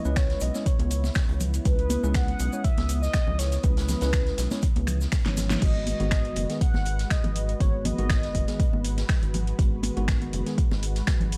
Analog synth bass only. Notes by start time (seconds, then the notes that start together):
0.05 C#2
0.41 B1
0.80 C#2
1.29 C#2
1.65 C#2
2.03 C#2
2.40 B1
2.78 C#2
3.27 C#2
3.64 C#2
4.02 C#2
4.38 B1
4.76 C#2
5.26 G#1
5.62 G#1
6.00 G#1
6.36 F#1
6.74 G#1
7.24 G#1
7.60 G#1
7.99 G#1
8.35 F#1
8.73 G#1
9.23 G#1
9.59 G#1
9.97 G#1
10.33 F#1
10.71 G#1
11.21 G#1